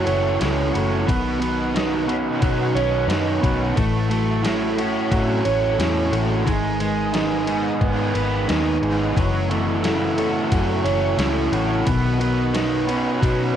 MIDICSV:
0, 0, Header, 1, 7, 480
1, 0, Start_track
1, 0, Tempo, 674157
1, 763, Time_signature, 4, 2, 24, 8
1, 9658, End_track
2, 0, Start_track
2, 0, Title_t, "String machine"
2, 0, Program_c, 0, 50
2, 0, Note_on_c, 0, 69, 67
2, 0, Note_on_c, 0, 76, 66
2, 0, Note_on_c, 0, 78, 62
2, 0, Note_on_c, 0, 85, 73
2, 739, Note_off_c, 0, 85, 0
2, 741, Note_off_c, 0, 69, 0
2, 741, Note_off_c, 0, 76, 0
2, 753, Note_on_c, 0, 71, 68
2, 757, Note_on_c, 0, 85, 76
2, 761, Note_on_c, 0, 75, 63
2, 2660, Note_off_c, 0, 71, 0
2, 2664, Note_off_c, 0, 75, 0
2, 2690, Note_on_c, 0, 69, 67
2, 2692, Note_on_c, 0, 76, 64
2, 4574, Note_off_c, 0, 78, 0
2, 4574, Note_off_c, 0, 85, 0
2, 4589, Note_off_c, 0, 69, 0
2, 4590, Note_off_c, 0, 76, 0
2, 4621, Note_on_c, 0, 75, 63
2, 4622, Note_on_c, 0, 80, 58
2, 4624, Note_on_c, 0, 71, 67
2, 4625, Note_on_c, 0, 87, 72
2, 6515, Note_off_c, 0, 75, 0
2, 6516, Note_off_c, 0, 80, 0
2, 6517, Note_off_c, 0, 71, 0
2, 6517, Note_off_c, 0, 87, 0
2, 6526, Note_on_c, 0, 69, 66
2, 6529, Note_on_c, 0, 78, 66
2, 6530, Note_on_c, 0, 85, 81
2, 6533, Note_on_c, 0, 76, 61
2, 8427, Note_off_c, 0, 69, 0
2, 8431, Note_off_c, 0, 76, 0
2, 8439, Note_on_c, 0, 71, 74
2, 8443, Note_on_c, 0, 75, 64
2, 9658, Note_off_c, 0, 71, 0
2, 9658, Note_off_c, 0, 75, 0
2, 9658, Note_off_c, 0, 78, 0
2, 9658, Note_off_c, 0, 85, 0
2, 9658, End_track
3, 0, Start_track
3, 0, Title_t, "Clean electric guitar"
3, 0, Program_c, 1, 27
3, 0, Note_on_c, 1, 57, 69
3, 0, Note_on_c, 1, 61, 71
3, 0, Note_on_c, 1, 66, 66
3, 49, Note_on_c, 1, 52, 70
3, 285, Note_off_c, 1, 61, 0
3, 287, Note_on_c, 1, 61, 68
3, 518, Note_off_c, 1, 66, 0
3, 520, Note_on_c, 1, 66, 68
3, 525, Note_off_c, 1, 57, 0
3, 759, Note_off_c, 1, 52, 0
3, 762, Note_on_c, 1, 51, 72
3, 783, Note_off_c, 1, 61, 0
3, 992, Note_off_c, 1, 51, 0
3, 1000, Note_on_c, 1, 51, 63
3, 1240, Note_on_c, 1, 59, 64
3, 1475, Note_off_c, 1, 66, 0
3, 1478, Note_on_c, 1, 66, 62
3, 1715, Note_on_c, 1, 61, 66
3, 1948, Note_off_c, 1, 51, 0
3, 1957, Note_on_c, 1, 51, 65
3, 2191, Note_off_c, 1, 61, 0
3, 2199, Note_on_c, 1, 61, 64
3, 2435, Note_off_c, 1, 66, 0
3, 2442, Note_off_c, 1, 59, 0
3, 2443, Note_on_c, 1, 66, 66
3, 2676, Note_off_c, 1, 51, 0
3, 2679, Note_on_c, 1, 52, 75
3, 2682, Note_off_c, 1, 61, 0
3, 2684, Note_off_c, 1, 66, 0
3, 2920, Note_off_c, 1, 52, 0
3, 2928, Note_on_c, 1, 52, 59
3, 3164, Note_on_c, 1, 57, 65
3, 3408, Note_on_c, 1, 66, 63
3, 3646, Note_on_c, 1, 61, 68
3, 3878, Note_off_c, 1, 52, 0
3, 3887, Note_on_c, 1, 52, 68
3, 4116, Note_off_c, 1, 61, 0
3, 4125, Note_on_c, 1, 61, 64
3, 4351, Note_off_c, 1, 66, 0
3, 4360, Note_on_c, 1, 66, 70
3, 4365, Note_off_c, 1, 57, 0
3, 4592, Note_off_c, 1, 52, 0
3, 4595, Note_on_c, 1, 51, 73
3, 4603, Note_off_c, 1, 66, 0
3, 4605, Note_off_c, 1, 61, 0
3, 4840, Note_off_c, 1, 51, 0
3, 4849, Note_on_c, 1, 51, 61
3, 5078, Note_off_c, 1, 51, 0
3, 5087, Note_on_c, 1, 51, 64
3, 5327, Note_on_c, 1, 63, 67
3, 5572, Note_on_c, 1, 59, 68
3, 5797, Note_off_c, 1, 51, 0
3, 5805, Note_on_c, 1, 51, 65
3, 6043, Note_off_c, 1, 59, 0
3, 6052, Note_on_c, 1, 59, 72
3, 6278, Note_off_c, 1, 63, 0
3, 6286, Note_on_c, 1, 63, 69
3, 6526, Note_off_c, 1, 51, 0
3, 6527, Note_off_c, 1, 63, 0
3, 6529, Note_off_c, 1, 59, 0
3, 6531, Note_on_c, 1, 52, 73
3, 6763, Note_off_c, 1, 52, 0
3, 6772, Note_on_c, 1, 52, 61
3, 7012, Note_on_c, 1, 57, 67
3, 7251, Note_on_c, 1, 66, 73
3, 7494, Note_on_c, 1, 61, 70
3, 7729, Note_off_c, 1, 52, 0
3, 7737, Note_on_c, 1, 52, 67
3, 7969, Note_off_c, 1, 61, 0
3, 7971, Note_on_c, 1, 61, 69
3, 8209, Note_off_c, 1, 57, 0
3, 8211, Note_off_c, 1, 66, 0
3, 8213, Note_on_c, 1, 66, 69
3, 8451, Note_off_c, 1, 52, 0
3, 8454, Note_on_c, 1, 51, 75
3, 8475, Note_off_c, 1, 61, 0
3, 8676, Note_off_c, 1, 51, 0
3, 8685, Note_on_c, 1, 51, 59
3, 8928, Note_on_c, 1, 59, 66
3, 9162, Note_off_c, 1, 66, 0
3, 9165, Note_on_c, 1, 66, 62
3, 9409, Note_on_c, 1, 61, 68
3, 9645, Note_off_c, 1, 51, 0
3, 9658, Note_off_c, 1, 59, 0
3, 9658, Note_off_c, 1, 61, 0
3, 9658, Note_off_c, 1, 66, 0
3, 9658, End_track
4, 0, Start_track
4, 0, Title_t, "Overdriven electric guitar"
4, 0, Program_c, 2, 29
4, 0, Note_on_c, 2, 54, 75
4, 0, Note_on_c, 2, 57, 70
4, 0, Note_on_c, 2, 64, 65
4, 0, Note_on_c, 2, 66, 65
4, 40, Note_on_c, 2, 73, 76
4, 269, Note_off_c, 2, 64, 0
4, 278, Note_on_c, 2, 64, 66
4, 299, Note_off_c, 2, 54, 0
4, 511, Note_off_c, 2, 57, 0
4, 520, Note_on_c, 2, 57, 63
4, 755, Note_off_c, 2, 57, 0
4, 758, Note_on_c, 2, 59, 70
4, 761, Note_off_c, 2, 64, 0
4, 779, Note_off_c, 2, 73, 0
4, 988, Note_off_c, 2, 59, 0
4, 997, Note_on_c, 2, 59, 59
4, 1240, Note_on_c, 2, 63, 65
4, 1468, Note_off_c, 2, 59, 0
4, 1477, Note_on_c, 2, 59, 62
4, 1715, Note_off_c, 2, 66, 0
4, 1718, Note_on_c, 2, 66, 64
4, 1960, Note_on_c, 2, 73, 68
4, 2184, Note_off_c, 2, 63, 0
4, 2192, Note_on_c, 2, 63, 68
4, 2425, Note_off_c, 2, 59, 0
4, 2433, Note_on_c, 2, 59, 64
4, 2671, Note_off_c, 2, 59, 0
4, 2674, Note_on_c, 2, 57, 74
4, 2678, Note_off_c, 2, 63, 0
4, 2681, Note_off_c, 2, 66, 0
4, 2682, Note_off_c, 2, 73, 0
4, 2910, Note_off_c, 2, 57, 0
4, 2919, Note_on_c, 2, 57, 64
4, 3153, Note_on_c, 2, 64, 64
4, 3389, Note_off_c, 2, 57, 0
4, 3397, Note_on_c, 2, 57, 67
4, 3641, Note_on_c, 2, 66, 62
4, 3881, Note_on_c, 2, 73, 73
4, 4110, Note_off_c, 2, 64, 0
4, 4118, Note_on_c, 2, 64, 65
4, 4351, Note_off_c, 2, 57, 0
4, 4360, Note_on_c, 2, 57, 66
4, 4599, Note_off_c, 2, 57, 0
4, 4602, Note_off_c, 2, 64, 0
4, 4602, Note_on_c, 2, 56, 72
4, 4603, Note_off_c, 2, 66, 0
4, 4604, Note_off_c, 2, 73, 0
4, 4836, Note_off_c, 2, 56, 0
4, 4844, Note_on_c, 2, 56, 63
4, 5075, Note_on_c, 2, 63, 67
4, 5312, Note_off_c, 2, 56, 0
4, 5320, Note_on_c, 2, 56, 68
4, 5558, Note_on_c, 2, 59, 64
4, 5798, Note_on_c, 2, 71, 75
4, 6028, Note_off_c, 2, 63, 0
4, 6036, Note_on_c, 2, 63, 70
4, 6271, Note_off_c, 2, 56, 0
4, 6280, Note_on_c, 2, 56, 68
4, 6517, Note_on_c, 2, 54, 72
4, 6522, Note_off_c, 2, 63, 0
4, 6522, Note_off_c, 2, 71, 0
4, 6523, Note_off_c, 2, 56, 0
4, 6523, Note_off_c, 2, 59, 0
4, 6761, Note_on_c, 2, 57, 62
4, 6994, Note_on_c, 2, 64, 65
4, 7228, Note_off_c, 2, 57, 0
4, 7237, Note_on_c, 2, 57, 68
4, 7480, Note_on_c, 2, 66, 63
4, 7719, Note_on_c, 2, 73, 69
4, 7952, Note_off_c, 2, 64, 0
4, 7960, Note_on_c, 2, 64, 69
4, 7982, Note_off_c, 2, 54, 0
4, 8196, Note_off_c, 2, 57, 0
4, 8205, Note_on_c, 2, 57, 66
4, 8440, Note_off_c, 2, 57, 0
4, 8443, Note_off_c, 2, 64, 0
4, 8443, Note_on_c, 2, 59, 75
4, 8465, Note_off_c, 2, 73, 0
4, 8677, Note_off_c, 2, 59, 0
4, 8685, Note_on_c, 2, 59, 59
4, 8927, Note_on_c, 2, 63, 63
4, 9154, Note_off_c, 2, 59, 0
4, 9163, Note_on_c, 2, 59, 70
4, 9396, Note_off_c, 2, 66, 0
4, 9399, Note_on_c, 2, 66, 63
4, 9658, Note_off_c, 2, 59, 0
4, 9658, Note_off_c, 2, 63, 0
4, 9658, Note_off_c, 2, 66, 0
4, 9658, End_track
5, 0, Start_track
5, 0, Title_t, "Overdriven electric guitar"
5, 0, Program_c, 3, 29
5, 0, Note_on_c, 3, 49, 63
5, 0, Note_on_c, 3, 52, 66
5, 48, Note_on_c, 3, 57, 69
5, 281, Note_off_c, 3, 49, 0
5, 290, Note_on_c, 3, 49, 74
5, 524, Note_off_c, 3, 52, 0
5, 533, Note_on_c, 3, 52, 61
5, 766, Note_off_c, 3, 57, 0
5, 767, Note_off_c, 3, 49, 0
5, 768, Note_off_c, 3, 52, 0
5, 775, Note_on_c, 3, 47, 70
5, 1012, Note_on_c, 3, 54, 62
5, 1247, Note_on_c, 3, 51, 64
5, 1487, Note_on_c, 3, 61, 65
5, 1716, Note_off_c, 3, 54, 0
5, 1725, Note_on_c, 3, 54, 68
5, 1961, Note_off_c, 3, 61, 0
5, 1969, Note_off_c, 3, 47, 0
5, 1970, Note_on_c, 3, 61, 67
5, 2200, Note_off_c, 3, 51, 0
5, 2209, Note_on_c, 3, 51, 70
5, 2437, Note_off_c, 3, 54, 0
5, 2445, Note_on_c, 3, 54, 58
5, 2685, Note_off_c, 3, 54, 0
5, 2686, Note_on_c, 3, 45, 74
5, 2687, Note_off_c, 3, 51, 0
5, 2687, Note_off_c, 3, 61, 0
5, 2926, Note_on_c, 3, 54, 60
5, 3158, Note_off_c, 3, 45, 0
5, 3167, Note_on_c, 3, 45, 60
5, 3403, Note_on_c, 3, 61, 66
5, 3631, Note_off_c, 3, 54, 0
5, 3639, Note_on_c, 3, 54, 71
5, 3867, Note_off_c, 3, 61, 0
5, 3875, Note_on_c, 3, 61, 64
5, 4107, Note_off_c, 3, 45, 0
5, 4116, Note_on_c, 3, 45, 70
5, 4348, Note_off_c, 3, 54, 0
5, 4357, Note_on_c, 3, 54, 60
5, 4600, Note_off_c, 3, 61, 0
5, 4601, Note_off_c, 3, 45, 0
5, 4601, Note_off_c, 3, 54, 0
5, 4604, Note_on_c, 3, 44, 71
5, 4844, Note_on_c, 3, 56, 59
5, 5086, Note_on_c, 3, 51, 65
5, 5330, Note_on_c, 3, 59, 65
5, 5557, Note_off_c, 3, 56, 0
5, 5565, Note_on_c, 3, 56, 70
5, 5796, Note_off_c, 3, 59, 0
5, 5805, Note_on_c, 3, 59, 65
5, 5806, Note_off_c, 3, 44, 0
5, 6037, Note_off_c, 3, 51, 0
5, 6046, Note_on_c, 3, 51, 69
5, 6274, Note_off_c, 3, 56, 0
5, 6283, Note_on_c, 3, 56, 62
5, 6525, Note_off_c, 3, 56, 0
5, 6526, Note_off_c, 3, 51, 0
5, 6526, Note_off_c, 3, 59, 0
5, 6528, Note_on_c, 3, 42, 68
5, 6771, Note_on_c, 3, 52, 62
5, 7010, Note_on_c, 3, 49, 65
5, 7248, Note_on_c, 3, 57, 62
5, 7477, Note_off_c, 3, 52, 0
5, 7486, Note_on_c, 3, 52, 66
5, 7725, Note_off_c, 3, 57, 0
5, 7728, Note_off_c, 3, 42, 0
5, 7734, Note_on_c, 3, 57, 67
5, 7968, Note_off_c, 3, 49, 0
5, 7977, Note_on_c, 3, 49, 67
5, 8209, Note_off_c, 3, 52, 0
5, 8217, Note_on_c, 3, 52, 65
5, 8449, Note_on_c, 3, 47, 70
5, 8450, Note_off_c, 3, 57, 0
5, 8452, Note_off_c, 3, 49, 0
5, 8452, Note_off_c, 3, 52, 0
5, 8686, Note_on_c, 3, 54, 60
5, 8925, Note_on_c, 3, 51, 67
5, 9171, Note_on_c, 3, 61, 65
5, 9404, Note_off_c, 3, 54, 0
5, 9412, Note_on_c, 3, 54, 66
5, 9646, Note_off_c, 3, 47, 0
5, 9652, Note_off_c, 3, 61, 0
5, 9658, Note_off_c, 3, 51, 0
5, 9658, Note_off_c, 3, 54, 0
5, 9658, End_track
6, 0, Start_track
6, 0, Title_t, "Fingered electric bass"
6, 0, Program_c, 4, 33
6, 46, Note_on_c, 4, 30, 89
6, 259, Note_off_c, 4, 30, 0
6, 290, Note_on_c, 4, 37, 101
6, 501, Note_off_c, 4, 37, 0
6, 531, Note_on_c, 4, 30, 94
6, 742, Note_off_c, 4, 30, 0
6, 771, Note_on_c, 4, 35, 90
6, 1624, Note_off_c, 4, 35, 0
6, 1724, Note_on_c, 4, 47, 84
6, 1938, Note_off_c, 4, 47, 0
6, 1954, Note_on_c, 4, 35, 86
6, 2172, Note_off_c, 4, 35, 0
6, 2187, Note_on_c, 4, 42, 93
6, 2409, Note_off_c, 4, 42, 0
6, 2446, Note_on_c, 4, 35, 91
6, 2659, Note_off_c, 4, 35, 0
6, 2683, Note_on_c, 4, 33, 89
6, 3540, Note_off_c, 4, 33, 0
6, 3644, Note_on_c, 4, 45, 86
6, 3858, Note_off_c, 4, 45, 0
6, 3885, Note_on_c, 4, 33, 87
6, 4099, Note_off_c, 4, 33, 0
6, 4118, Note_on_c, 4, 40, 95
6, 4336, Note_off_c, 4, 40, 0
6, 4353, Note_on_c, 4, 33, 94
6, 4573, Note_off_c, 4, 33, 0
6, 4606, Note_on_c, 4, 32, 94
6, 5462, Note_off_c, 4, 32, 0
6, 5561, Note_on_c, 4, 44, 86
6, 5777, Note_off_c, 4, 44, 0
6, 5803, Note_on_c, 4, 32, 97
6, 6019, Note_off_c, 4, 32, 0
6, 6042, Note_on_c, 4, 39, 90
6, 6258, Note_off_c, 4, 39, 0
6, 6275, Note_on_c, 4, 32, 92
6, 6494, Note_off_c, 4, 32, 0
6, 6524, Note_on_c, 4, 30, 94
6, 7382, Note_off_c, 4, 30, 0
6, 7486, Note_on_c, 4, 42, 85
6, 7700, Note_off_c, 4, 42, 0
6, 7717, Note_on_c, 4, 30, 87
6, 7935, Note_off_c, 4, 30, 0
6, 7954, Note_on_c, 4, 37, 95
6, 8174, Note_off_c, 4, 37, 0
6, 8203, Note_on_c, 4, 33, 96
6, 8419, Note_off_c, 4, 33, 0
6, 8454, Note_on_c, 4, 35, 93
6, 9306, Note_off_c, 4, 35, 0
6, 9415, Note_on_c, 4, 47, 84
6, 9624, Note_off_c, 4, 47, 0
6, 9658, End_track
7, 0, Start_track
7, 0, Title_t, "Drums"
7, 46, Note_on_c, 9, 51, 69
7, 118, Note_off_c, 9, 51, 0
7, 288, Note_on_c, 9, 51, 89
7, 296, Note_on_c, 9, 38, 96
7, 360, Note_off_c, 9, 51, 0
7, 367, Note_off_c, 9, 38, 0
7, 534, Note_on_c, 9, 51, 67
7, 606, Note_off_c, 9, 51, 0
7, 771, Note_on_c, 9, 36, 102
7, 775, Note_on_c, 9, 51, 86
7, 842, Note_off_c, 9, 36, 0
7, 847, Note_off_c, 9, 51, 0
7, 1010, Note_on_c, 9, 51, 67
7, 1081, Note_off_c, 9, 51, 0
7, 1252, Note_on_c, 9, 51, 78
7, 1260, Note_on_c, 9, 38, 110
7, 1323, Note_off_c, 9, 51, 0
7, 1331, Note_off_c, 9, 38, 0
7, 1382, Note_on_c, 9, 38, 32
7, 1453, Note_off_c, 9, 38, 0
7, 1490, Note_on_c, 9, 51, 61
7, 1561, Note_off_c, 9, 51, 0
7, 1724, Note_on_c, 9, 51, 80
7, 1726, Note_on_c, 9, 36, 102
7, 1795, Note_off_c, 9, 51, 0
7, 1797, Note_off_c, 9, 36, 0
7, 1971, Note_on_c, 9, 51, 63
7, 2042, Note_off_c, 9, 51, 0
7, 2208, Note_on_c, 9, 51, 80
7, 2216, Note_on_c, 9, 38, 102
7, 2279, Note_off_c, 9, 51, 0
7, 2287, Note_off_c, 9, 38, 0
7, 2447, Note_on_c, 9, 36, 75
7, 2450, Note_on_c, 9, 51, 67
7, 2518, Note_off_c, 9, 36, 0
7, 2521, Note_off_c, 9, 51, 0
7, 2686, Note_on_c, 9, 36, 108
7, 2687, Note_on_c, 9, 51, 83
7, 2758, Note_off_c, 9, 36, 0
7, 2759, Note_off_c, 9, 51, 0
7, 2928, Note_on_c, 9, 51, 66
7, 2999, Note_off_c, 9, 51, 0
7, 3166, Note_on_c, 9, 51, 85
7, 3174, Note_on_c, 9, 38, 103
7, 3237, Note_off_c, 9, 51, 0
7, 3245, Note_off_c, 9, 38, 0
7, 3293, Note_on_c, 9, 38, 30
7, 3364, Note_off_c, 9, 38, 0
7, 3408, Note_on_c, 9, 51, 71
7, 3479, Note_off_c, 9, 51, 0
7, 3643, Note_on_c, 9, 36, 101
7, 3645, Note_on_c, 9, 51, 85
7, 3714, Note_off_c, 9, 36, 0
7, 3716, Note_off_c, 9, 51, 0
7, 3883, Note_on_c, 9, 51, 72
7, 3954, Note_off_c, 9, 51, 0
7, 4128, Note_on_c, 9, 51, 88
7, 4136, Note_on_c, 9, 38, 103
7, 4200, Note_off_c, 9, 51, 0
7, 4207, Note_off_c, 9, 38, 0
7, 4365, Note_on_c, 9, 51, 69
7, 4437, Note_off_c, 9, 51, 0
7, 4605, Note_on_c, 9, 36, 103
7, 4609, Note_on_c, 9, 51, 86
7, 4676, Note_off_c, 9, 36, 0
7, 4680, Note_off_c, 9, 51, 0
7, 4844, Note_on_c, 9, 51, 68
7, 4915, Note_off_c, 9, 51, 0
7, 5083, Note_on_c, 9, 51, 83
7, 5091, Note_on_c, 9, 38, 101
7, 5154, Note_off_c, 9, 51, 0
7, 5162, Note_off_c, 9, 38, 0
7, 5214, Note_on_c, 9, 38, 32
7, 5286, Note_off_c, 9, 38, 0
7, 5322, Note_on_c, 9, 51, 65
7, 5394, Note_off_c, 9, 51, 0
7, 5562, Note_on_c, 9, 36, 104
7, 5563, Note_on_c, 9, 51, 79
7, 5634, Note_off_c, 9, 36, 0
7, 5634, Note_off_c, 9, 51, 0
7, 5805, Note_on_c, 9, 51, 65
7, 5876, Note_off_c, 9, 51, 0
7, 6044, Note_on_c, 9, 51, 80
7, 6052, Note_on_c, 9, 38, 101
7, 6115, Note_off_c, 9, 51, 0
7, 6123, Note_off_c, 9, 38, 0
7, 6286, Note_on_c, 9, 51, 66
7, 6357, Note_off_c, 9, 51, 0
7, 6526, Note_on_c, 9, 36, 103
7, 6531, Note_on_c, 9, 51, 83
7, 6597, Note_off_c, 9, 36, 0
7, 6602, Note_off_c, 9, 51, 0
7, 6770, Note_on_c, 9, 51, 62
7, 6841, Note_off_c, 9, 51, 0
7, 7005, Note_on_c, 9, 51, 80
7, 7013, Note_on_c, 9, 38, 110
7, 7076, Note_off_c, 9, 51, 0
7, 7084, Note_off_c, 9, 38, 0
7, 7131, Note_on_c, 9, 38, 32
7, 7202, Note_off_c, 9, 38, 0
7, 7246, Note_on_c, 9, 51, 68
7, 7317, Note_off_c, 9, 51, 0
7, 7486, Note_on_c, 9, 51, 90
7, 7487, Note_on_c, 9, 36, 100
7, 7558, Note_off_c, 9, 51, 0
7, 7559, Note_off_c, 9, 36, 0
7, 7728, Note_on_c, 9, 51, 67
7, 7799, Note_off_c, 9, 51, 0
7, 7964, Note_on_c, 9, 51, 90
7, 7972, Note_on_c, 9, 38, 106
7, 8035, Note_off_c, 9, 51, 0
7, 8043, Note_off_c, 9, 38, 0
7, 8209, Note_on_c, 9, 51, 71
7, 8280, Note_off_c, 9, 51, 0
7, 8449, Note_on_c, 9, 51, 88
7, 8451, Note_on_c, 9, 36, 106
7, 8520, Note_off_c, 9, 51, 0
7, 8523, Note_off_c, 9, 36, 0
7, 8693, Note_on_c, 9, 51, 66
7, 8764, Note_off_c, 9, 51, 0
7, 8931, Note_on_c, 9, 51, 92
7, 8939, Note_on_c, 9, 38, 99
7, 9003, Note_off_c, 9, 51, 0
7, 9010, Note_off_c, 9, 38, 0
7, 9175, Note_on_c, 9, 51, 71
7, 9247, Note_off_c, 9, 51, 0
7, 9416, Note_on_c, 9, 36, 97
7, 9421, Note_on_c, 9, 51, 83
7, 9487, Note_off_c, 9, 36, 0
7, 9492, Note_off_c, 9, 51, 0
7, 9658, End_track
0, 0, End_of_file